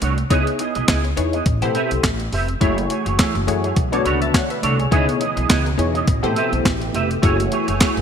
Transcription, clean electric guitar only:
0.01 0.22 A3 medium
0.01 0.18 D4 medium
0.01 0.17 F#4 medium
0.01 0.16 C#5 medium
0.18 muted clean electric guitar stroke soft
0.30 0.51 B3 loud
0.30 0.47 E4 medium
0.30 0.46 G#4 loud
0.30 0.46 D#5 loud
0.47 muted clean electric guitar stroke medium
0.59 0.76 B3 medium
0.59 0.75 E4 medium
0.59 0.75 G#4 medium
0.59 0.74 D#5 medium
0.75 0.86 B3 soft
0.75 0.87 E4 medium
0.75 0.88 G#4 medium
0.75 0.88 D#5 medium
0.88 1.08 B3 medium
0.88 1.04 E4 medium
0.88 1.04 G#4 medium
0.88 1.03 D#5 medium
1.04 muted clean electric guitar stroke medium
1.17 muted clean electric guitar stroke soft
1.33 1.46 B3 medium
1.33 1.46 E4 medium
1.33 1.47 G#4 medium
1.33 1.47 D#5 medium
1.46 muted clean electric guitar stroke soft
1.62 1.73 C4 medium
1.62 1.74 G4 medium
1.62 1.75 B4 medium
1.62 1.75 F#5 medium
1.75 1.95 C4 medium
1.75 1.91 G4 loud
1.75 1.91 B4 medium
1.75 1.90 E5 loud
1.91 muted clean electric guitar stroke medium
2.20 muted clean electric guitar stroke soft
2.32 2.53 C4 medium
2.32 2.48 G4 medium
2.32 2.48 B4 medium
2.32 2.47 E5 loud
2.48 muted clean electric guitar stroke medium
2.60 2.81 A3 loud
2.60 2.78 E4 medium
2.60 2.77 G#4 medium
2.60 2.76 C#5 medium
2.77 muted clean electric guitar stroke soft
2.90 3.06 A3 medium
2.90 3.06 E4 medium
2.90 3.05 G#4 medium
2.90 3.04 C#5 medium
3.05 3.17 A3 medium
3.05 3.18 E4 medium
3.05 3.18 G#4 medium
3.05 3.19 C#5 medium
3.18 3.39 A3 medium
3.18 3.35 E4 medium
3.18 3.34 G#4 medium
3.18 3.34 C#5 medium
3.35 muted clean electric guitar stroke medium
3.47 muted clean electric guitar stroke medium
3.63 3.75 A3 medium
3.63 3.76 E4 medium
3.63 3.76 G#4 medium
3.63 3.76 C#5 medium
3.76 muted clean electric guitar stroke soft
3.92 4.04 A3 soft
3.92 4.04 D4 medium
3.92 4.05 F#4 medium
3.92 4.06 D5 medium
4.05 4.25 A3 medium
4.05 4.21 D4 medium
4.05 4.20 F#4 loud
4.05 4.20 C#5 loud
4.21 muted clean electric guitar stroke medium
4.50 muted clean electric guitar stroke soft
4.62 4.83 A3 medium
4.62 4.79 D4 medium
4.62 4.79 F#4 medium
4.62 4.78 C#5 loud
4.79 muted clean electric guitar stroke medium
4.91 5.12 B3 medium
4.91 5.08 E4 loud
4.91 5.07 G#4 loud
4.91 5.06 D#5 loud
5.07 muted clean electric guitar stroke soft
5.20 5.37 B3 medium
5.20 5.36 E4 medium
5.20 5.35 G#4 medium
5.20 5.35 D#5 medium
5.36 5.47 B3 medium
5.36 5.48 E4 medium
5.36 5.49 G#4 medium
5.36 5.49 D#5 medium
5.49 5.70 B3 medium
5.49 5.66 E4 medium
5.49 5.65 G#4 medium
5.49 5.64 D#5 medium
5.66 muted clean electric guitar stroke soft
5.78 muted clean electric guitar stroke soft
5.94 6.06 B3 medium
5.94 6.07 E4 medium
5.94 6.07 G#4 medium
5.94 6.08 D#5 medium
6.07 muted clean electric guitar stroke soft
6.23 6.34 C4 medium
6.23 6.35 G4 medium
6.23 6.36 B4 medium
6.23 6.36 F#5 medium
6.36 6.56 C4 medium
6.36 6.52 G4 medium
6.36 6.52 B4 medium
6.36 6.51 E5 loud
6.52 muted clean electric guitar stroke medium
6.81 muted clean electric guitar stroke medium
6.94 7.14 C4 medium
6.94 7.10 G4 loud
6.94 7.09 B4 medium
6.94 7.08 E5 loud
7.10 muted clean electric guitar stroke soft
7.22 7.43 A3 medium
7.22 7.39 E4 medium
7.22 7.38 G#4 medium
7.22 7.37 C#5 loud
7.39 muted clean electric guitar stroke soft
7.51 7.68 A3 medium
7.51 7.68 E4 medium
7.51 7.67 G#4 medium
7.51 7.66 C#5 medium
7.67 7.79 A3 medium
7.67 7.79 E4 medium
7.67 7.80 G#4 medium
7.67 7.81 C#5 medium
7.80 8.01 A3 medium
7.80 7.96 E4 medium
7.80 7.96 G#4 medium
7.80 7.95 C#5 medium
7.96 muted clean electric guitar stroke medium

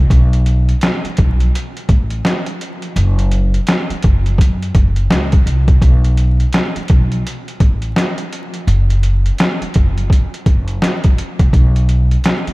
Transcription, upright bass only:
0.10 0.71 B1 loud
1.04 muted upright bass stroke soft
1.18 1.49 B1 loud
1.89 2.19 A1 medium
2.96 3.57 F#1 loud
3.90 muted upright bass stroke soft
4.04 4.34 F#1 loud
4.38 4.69 F#2 loud
4.75 5.05 F#1 loud
5.10 5.41 C#2 medium
5.46 5.77 C2 medium
5.82 6.43 B1 loud
6.75 muted upright bass stroke soft
6.90 7.20 B1 medium
7.60 7.91 A1 medium
8.67 9.29 F#1 loud
9.61 muted upright bass stroke soft
9.76 10.06 F#1 medium
10.46 10.77 F#1 medium
11.39 11.51 C2 medium
11.53 12.14 B1 loud
12.47 muted upright bass stroke soft

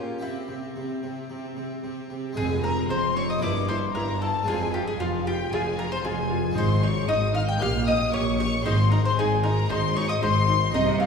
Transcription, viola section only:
0.00 0.22 C#4 soft
0.21 0.47 C4 soft
0.48 0.74 C4 soft
0.75 1.01 C4 soft
1.02 1.27 C4 soft
1.29 1.55 C4 medium
1.56 1.81 C4 soft
1.82 2.08 C4 soft
2.09 2.35 C4 soft
2.37 2.45 C4 medium
2.63 2.71 C4 medium
2.89 2.97 C4 medium
3.16 3.24 C4 medium
3.43 3.51 E4 medium
3.69 3.77 E4 medium
3.96 4.04 E4 medium
4.23 4.31 E4 medium
4.48 4.56 F4 medium
4.74 4.82 F4 medium
5.00 5.08 F4 medium
5.26 5.34 F4 medium
5.52 5.60 F4 medium
5.78 5.86 F4 medium
6.04 6.12 F4 medium
6.30 6.38 F4 medium
6.56 6.64 D#4 medium
6.82 6.90 D#4 medium
7.08 7.16 D#4 medium
7.34 7.42 D#4 medium
7.60 7.68 G4 medium
7.87 7.95 G4 medium
8.14 8.22 G4 medium
8.39 8.47 G4 medium
8.65 8.73 D#4 medium
8.92 9.00 D#4 medium
9.18 9.26 D#4 medium
9.44 9.52 D#4 medium
9.70 9.78 D#4 medium
9.95 10.03 D#4 medium
10.21 10.29 D#4 medium
10.47 10.55 D#4 medium
10.73 10.81 C4 medium
10.99 11.06 C4 medium

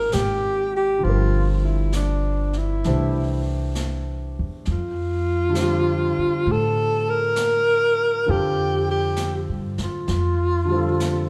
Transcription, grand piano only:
0.00 1.03 F3 soft
0.00 1.05 G#3 soft
0.00 1.04 A#3 soft
0.00 1.04 D#4 soft
0.00 1.06 C5 soft
0.99 2.83 D3 soft
0.99 2.84 G3 soft
1.03 2.87 F3 soft
1.03 2.85 C4 soft
1.09 2.88 A#4 soft
2.85 4.66 E3 soft
2.85 4.66 A3 soft
2.85 4.67 D4 soft
2.85 4.67 G4 soft
2.85 4.67 C5 soft
5.49 8.24 D3 soft
5.49 8.26 G3 soft
5.55 8.26 C4 soft
5.55 8.27 F4 soft
5.60 8.25 G4 soft
8.26 10.08 D3 soft
8.26 10.09 C4 soft
8.26 10.09 F4 soft
8.26 10.08 G4 soft
8.26 10.09 A4 soft
10.65 11.29 D3 soft
10.65 11.29 G3 soft
10.72 11.29 C4 soft
10.72 11.29 F4 soft
10.77 11.29 A4 soft

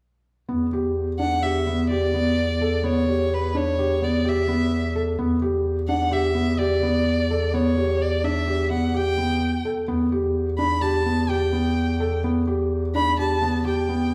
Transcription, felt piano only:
0.49 0.65 B3 medium
0.73 1.06 G4 medium
1.19 1.36 D4 medium
1.43 1.60 G4 medium
1.67 1.83 B3 medium
1.91 2.07 G4 medium
2.14 2.47 B3 medium
2.61 2.78 A4 medium
2.84 3.00 B3 medium
3.08 3.41 G4 medium
3.55 3.71 D4 medium
3.78 3.95 G4 medium
4.02 4.19 B3 medium
4.25 4.42 G4 medium
4.48 4.82 B3 medium
4.95 5.12 A4 medium
5.19 5.36 B3 medium
5.42 5.76 G4 medium
5.88 6.06 D4 medium
6.11 6.29 G4 medium
6.35 6.52 B3 medium
6.59 6.76 G4 medium
6.83 7.17 B3 medium
7.31 7.47 A4 medium
7.54 7.71 B3 medium
7.78 8.11 G4 medium
8.24 8.41 D4 medium
8.48 8.64 G4 medium
8.70 8.88 B3 medium
8.94 9.11 G4 medium
9.18 9.52 B3 medium
9.65 9.82 A4 medium
9.88 10.05 B3 medium
10.12 10.46 G4 medium
10.58 10.76 D4 medium
10.82 10.99 G4 medium
11.06 11.23 B3 medium
11.29 11.46 G4 medium
11.52 11.86 B3 medium
12.00 12.17 A4 medium
12.24 12.41 B3 medium
12.47 12.81 G4 medium
12.95 13.11 D4 medium
13.19 13.35 G4 medium
13.42 13.58 B3 medium
13.65 13.82 G4 medium
13.89 14.14 B3 medium

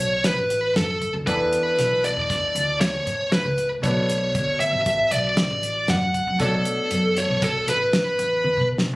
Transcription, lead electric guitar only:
0.00 0.26 C#5 medium
0.25 0.72 B4 medium
0.76 1.12 A4 medium
1.27 2.06 B4 medium
2.04 2.80 D5 medium
2.81 3.28 C#5 medium
3.33 3.68 B4 medium
3.84 4.60 C#5 medium
4.60 5.12 E5 medium
5.12 5.91 D5 medium
5.90 6.42 F#5 medium
6.40 7.19 A4 medium
7.18 7.43 C#5 medium
7.44 7.69 A4 medium
7.69 8.67 B4 medium

